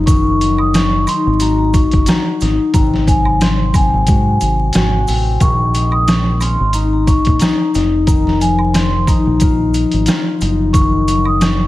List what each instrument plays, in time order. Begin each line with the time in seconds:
Already playing: fingered electric bass F#1, harp D#4 F4
0.06 harp D#3, vibraphone C#6, kick, closed hi-hat, maracas
0.41 harp F#3, closed hi-hat, maracas
0.58 vibraphone D#6, high woodblock
0.74 vibraphone C#6, cross-stick, snare, closed hi-hat, maracas
1.07 harp D#4, vibraphone C6, closed hi-hat, high woodblock, maracas
1.27 fingered electric bass G#1
1.40 harp F#4, vibraphone A#5, closed hi-hat, maracas
1.58 vibraphone A#5
1.73 vibraphone C#6, kick, closed hi-hat, maracas
1.91 fingered electric bass F#1, kick, closed hi-hat
2.06 harp F#4, vibraphone A#5, cross-stick, snare, closed hi-hat, maracas
2.41 fingered electric bass G#1, harp D#4, snare, closed hi-hat, maracas
2.73 fingered electric bass G#1, harp C3, vibraphone A#5, kick, closed hi-hat, maracas
2.94 snare
3.07 harp F#3, vibraphone G#5, kick, closed hi-hat, maracas
3.25 high woodblock
3.41 vibraphone C6, cross-stick, snare, closed hi-hat, maracas
3.74 harp C4, vibraphone G#5, kick, closed hi-hat, high woodblock, maracas
3.94 fingered electric bass G#1
4.07 fingered electric bass G#2, harp F#4, kick, closed hi-hat, maracas
4.41 fingered electric bass G#1, closed hi-hat, maracas
4.73 fingered electric bass G#1, harp F#4, cross-stick, snare, closed hi-hat, maracas
5.07 fingered electric bass A1, harp C4, open hi-hat, maracas
5.40 fingered electric bass A#1, harp D#3, vibraphone C#6, kick, closed hi-hat, maracas
5.73 harp G#3, closed hi-hat, maracas
5.91 vibraphone D#6, high woodblock
6.07 vibraphone C#6, cross-stick, snare, closed hi-hat, maracas
6.41 harp C#4, vibraphone C6, closed hi-hat, high woodblock, maracas
6.60 fingered electric bass G#1
6.73 harp D#4, vibraphone A#5, closed hi-hat, maracas
6.93 vibraphone A#5
7.07 vibraphone C#6, kick, closed hi-hat, maracas
7.25 fingered electric bass A#1, kick, closed hi-hat
7.39 harp D#4, vibraphone A#5, cross-stick, snare, closed hi-hat, maracas
7.74 fingered electric bass F1, harp D#4, snare, closed hi-hat, maracas
8.07 harp D#3, vibraphone A#5, kick, closed hi-hat, maracas
8.27 snare
8.40 harp F3, vibraphone G#5, closed hi-hat, maracas
8.59 high woodblock
8.73 vibraphone C6, cross-stick, snare, closed hi-hat, maracas
9.07 harp D#4, vibraphone A#5, kick, closed hi-hat, high woodblock, maracas
9.27 fingered electric bass A#1
9.40 harp F4, kick, closed hi-hat, maracas
9.74 closed hi-hat, maracas
9.91 fingered electric bass G#1, closed hi-hat
10.06 harp F4, cross-stick, snare, closed hi-hat, maracas
10.41 fingered electric bass F#1, harp D#4, closed hi-hat, maracas
10.73 harp D#3, vibraphone C#6, kick, closed hi-hat, maracas
11.08 harp F#3, closed hi-hat, maracas
11.25 vibraphone D#6, high woodblock
11.41 vibraphone C#6, cross-stick, snare, closed hi-hat, maracas